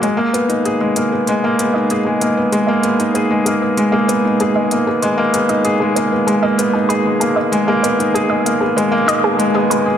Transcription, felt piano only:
0.02 G#3
0.17 A#3
0.33 B3
0.49 D#4
0.66 G#4
0.81 G#3
0.97 A#3
1.13 B3
1.28 G#3
1.44 A#3
1.60 B3
1.76 D#4
1.91 G#4
2.06 G#3
2.21 A#3
2.37 B3
2.53 G#3
2.68 A#3
2.84 B3
3.00 D#4
3.15 G#4
3.31 G#3
3.46 A#3
3.62 B3
3.77 G#3
3.92 A#3
4.08 B3
4.25 D#4
4.41 G#4
4.55 G#3
4.72 A#3
4.87 B3
5.03 G#3
5.18 A#3
5.34 B3
5.49 D#4
5.65 G#4
5.82 G#3
5.97 A#3
6.12 B3
6.27 G#3
6.43 A#3
6.58 B3
6.75 D#4
6.89 G#4
7.05 G#3
7.21 A#3
7.37 B3
7.52 G#3
7.68 A#3
7.84 B3
7.99 D#4
8.15 G#4
8.30 G#3
8.46 A#3
8.61 B3
8.77 G#3
8.92 A#3
9.06 D#4
9.23 B3
9.39 G#3
9.54 B3
9.70 G#3
9.86 G#4

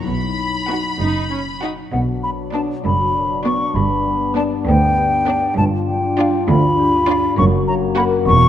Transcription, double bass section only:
0.06 B1
1.00 F#1
1.94 B1
2.85 F#1
3.76 G1
4.67 D2
5.58 G1
6.49 D2
7.39 F#1
8.28 E1

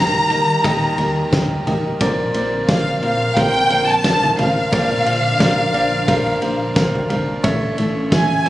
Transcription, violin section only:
Already playing: A#5
2.69 F5
3.03 F5
3.37 G5
3.89 A5
4.38 F5
8.13 G#5

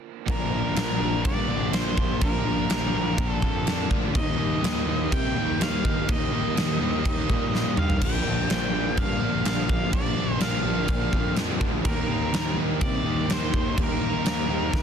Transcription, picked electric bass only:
0.27 A#1
0.52 A#1
0.77 A#1
1.01 A#1
1.25 G2
1.48 A#1
1.72 A#1
1.97 A#1
2.21 A#1
2.45 A#1
2.69 A#1
2.93 A#1
3.18 A#1
3.42 F2
3.66 F2
3.90 D2
4.15 D#2
4.39 D#2
4.63 D#2
4.86 D#2
5.12 C3
5.35 D#2
5.60 D#2
5.85 D#2
6.09 D#2
6.32 D#2
6.57 D#2
6.80 D#2
7.05 D#2
7.30 A#2
7.53 A#2
7.77 G2
8.02 A#1
8.25 A#1
8.51 A#1
8.75 A#1
8.98 G2
9.22 A#1
9.45 A#1
9.69 A#1
9.93 A#1
10.17 A#1
10.40 A#1
10.64 A#1
10.88 A#1
11.13 F2
11.37 F2
11.61 D2
11.85 D#2
12.09 D#2
12.32 D#2
12.56 D#2
12.81 C3
13.03 D#2
13.28 D#2
13.53 D#2
13.78 D#2
14.01 D#2
14.25 D#2
14.49 D#2
14.73 D#2

